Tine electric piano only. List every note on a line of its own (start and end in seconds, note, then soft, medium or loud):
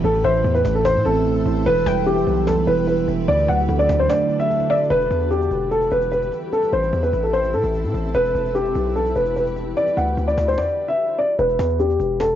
0.04 0.43 A2 loud
0.23 1.25 E3 medium
0.44 0.83 A2 medium
0.65 1.66 A3 medium
0.85 1.24 A2 medium
1.05 1.66 C4 loud
1.25 1.66 A2 medium
1.47 1.67 E4 medium
1.66 2.05 E3 medium
1.87 2.88 G3 medium
2.06 2.46 E3 medium
2.27 3.28 B3 medium
2.47 2.87 E3 medium
2.68 3.28 E4 medium
2.88 3.28 E3 medium
3.08 3.28 E5 medium
3.28 3.67 D3 loud
3.48 4.50 F#3 medium
3.69 4.08 D3 medium
3.89 4.90 A3 medium
4.09 4.49 D3 medium
4.30 4.90 D4 medium
4.50 4.90 D3 medium
4.70 4.90 D5 medium